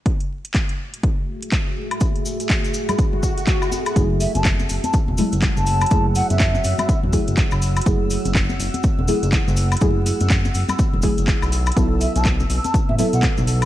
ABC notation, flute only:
X:1
M:4/4
L:1/16
Q:"Swing 16ths" 1/4=123
K:F#m
V:1 name="Flute"
z16 | z16 | z2 e a z3 a z4 z a3- | a z f e6 z6 z |
z16 | z16 | z2 e a z3 a z e e f z4 |]